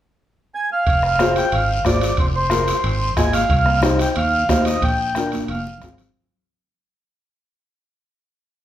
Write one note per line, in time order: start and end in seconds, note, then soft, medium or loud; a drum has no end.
0.55 0.70 G#5 loud
0.73 1.33 F5 loud
0.87 1.39 F1 medium
0.87 bombo low medium
0.87 high conga soft
0.87 high timbale medium
0.87 long guiro medium
1.03 bombo rim medium
1.19 1.43 F4 medium
1.19 1.43 G#4 medium
1.19 1.43 C5 medium
1.19 bombo rim medium
1.19 high conga medium
1.19 high timbale soft
1.19 short guiro medium
1.36 1.54 G5 loud
1.36 high timbale medium
1.36 short guiro medium
1.52 1.79 G#1 loud
1.52 1.83 F5 medium
1.52 high conga soft
1.52 high timbale medium
1.52 long guiro medium
1.85 2.11 G#1 medium
1.85 2.09 F4 medium
1.85 2.09 G#4 medium
1.85 2.09 C5 medium
1.85 2.16 D5 medium
1.85 bombo low medium
1.85 bombo rim medium
1.85 high conga medium
1.85 high timbale medium
1.85 short guiro medium
2.01 high conga medium
2.01 high timbale medium
2.01 short guiro medium
2.17 2.71 F1 loud
2.17 2.27 C5 medium
2.17 bombo low medium
2.17 high conga soft
2.17 high timbale medium
2.35 3.14 C5 medium
2.50 2.74 F4 medium
2.50 2.74 G#4 medium
2.50 2.74 A#4 medium
2.50 bombo rim medium
2.50 high conga medium
2.50 high timbale medium
2.50 short guiro medium
2.68 high timbale medium
2.68 short guiro medium
2.84 3.11 G#1 loud
2.84 high conga soft
2.84 high timbale medium
2.84 long guiro medium
3.17 3.43 G#1 medium
3.17 3.40 F4 medium
3.17 3.40 G#4 medium
3.17 3.41 D#5 medium
3.17 3.33 G#5 medium
3.17 bombo low medium
3.17 bombo rim medium
3.17 high conga medium
3.17 high timbale medium
3.17 short guiro medium
3.33 3.80 F5 medium
3.33 high conga medium
3.33 high timbale medium
3.33 short guiro medium
3.49 4.03 C2 loud
3.49 bombo low medium
3.49 high conga soft
3.49 high timbale medium
3.49 long guiro medium
3.66 bombo rim medium
3.66 high conga medium
3.82 4.06 D#4 medium
3.82 4.06 G4 medium
3.82 4.06 C5 medium
3.82 bombo rim medium
3.82 high conga medium
3.82 high timbale medium
3.82 short guiro medium
3.99 4.08 G5 medium
3.99 high timbale medium
3.99 short guiro medium
4.15 4.43 D#2 medium
4.15 4.63 F5 medium
4.15 high conga soft
4.15 high timbale medium
4.15 long guiro medium
4.49 4.76 D#2 medium
4.49 4.73 D#4 medium
4.49 4.73 G4 medium
4.49 4.73 C5 medium
4.49 bombo low medium
4.49 bombo rim medium
4.49 high conga medium
4.49 high timbale medium
4.49 low timbale medium
4.49 short guiro medium
4.65 4.83 D#5 medium
4.65 high conga medium
4.65 high timbale medium
4.65 short guiro medium
4.82 5.35 A#1 loud
4.82 5.30 G5 medium
4.82 bombo low medium
4.82 high conga soft
4.82 high timbale medium
4.82 long guiro medium
5.15 5.39 D4 medium
5.15 5.40 F4 medium
5.15 5.40 A#4 medium
5.15 bombo rim medium
5.15 high conga medium
5.15 high timbale medium
5.15 short guiro medium
5.32 high conga medium
5.32 high timbale medium
5.32 short guiro medium
5.45 5.82 F1 loud
5.45 high conga medium
5.45 high timbale medium
5.49 5.96 F5 medium
5.49 long guiro medium
5.55 high conga medium
5.67 low conga medium
5.77 low conga medium
5.82 6.09 G#1 medium
5.82 6.06 C4 medium
5.82 6.06 F4 medium
5.82 6.06 G#4 medium
5.82 bombo low medium
5.82 bombo rim medium
5.82 high timbale medium
5.82 low timbale medium
5.82 short guiro medium
5.89 low conga medium
5.98 low conga medium
5.98 high timbale medium
5.98 short guiro medium
6.10 low conga medium